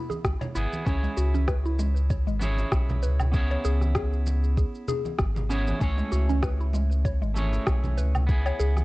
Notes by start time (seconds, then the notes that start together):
Already playing: B3 E4 G#4
0.10 G#4, high conga, shaker
0.25 C#2, kick, cross-stick, shaker
0.41 C#5, muted conga, low conga, shaker
0.55 G#1 B3 E4 G#4, shaker
0.73 high conga, shaker
0.85 C#2 B3 C#4 E4 G#4, kick, shaker
0.89 C#5
1.03 G#3, muted conga, shaker
1.17 C#2 F#4, shaker
1.34 C#4, high conga, shaker
1.48 B4, kick, cross-stick, shaker
1.66 E4, shaker
1.79 G#3, muted conga, shaker
1.96 shaker
2.10 C#5, kick, shaker
2.27 G#1 G#3, muted conga, shaker
2.39 B3 C#4 E4 G#4, high conga, shaker
2.44 C#5
2.58 muted conga, shaker
2.72 B1, kick, cross-stick, shaker
2.89 high conga, low conga, shaker
3.03 C#2 B4, shaker
3.20 low conga, low woodblock, shaker
3.32 B3 C#4 E4 G#4, kick, shaker
3.36 C#5
3.51 C#5, muted conga, shaker
3.65 C#2 G#4, shaker
3.81 cross-stick, high conga, shaker
3.95 G#4, kick, cross-stick, shaker
4.13 shaker
4.26 muted conga, shaker
4.44 shaker
4.57 G#4, kick, shaker
4.75 shaker
4.88 G#4, low conga, shaker
5.05 high conga, shaker
5.19 G#1, kick, cross-stick, shaker
5.36 muted conga, low conga, shaker
5.49 B3 C#4 E4 G#4 C#5, shaker
5.67 high conga, shaker
5.79 C#2 A3 C#4 E4 G#4, kick, shaker
5.83 C#5
5.98 G#3, muted conga, shaker
6.12 C#2 F#4, shaker
6.29 C#4, high conga, shaker
6.43 B4, kick, cross-stick, shaker
6.60 E4, shaker
6.73 G#3, muted conga, shaker
6.92 shaker
7.05 C#5, kick, shaker
7.22 G#1 G#3, muted conga, shaker
7.34 A3 C#4 E4 G#4 C#5, high conga, shaker
7.53 muted conga, shaker
7.67 B1, kick, cross-stick, shaker
7.84 high conga, low conga, shaker
7.97 C#2 B4, shaker
8.15 low conga, low woodblock, shaker
8.27 B3 E4 G#4, kick, shaker
8.46 C#5, muted conga, low woodblock, shaker
8.60 C#2 G#4, shaker
8.77 cross-stick, high conga, shaker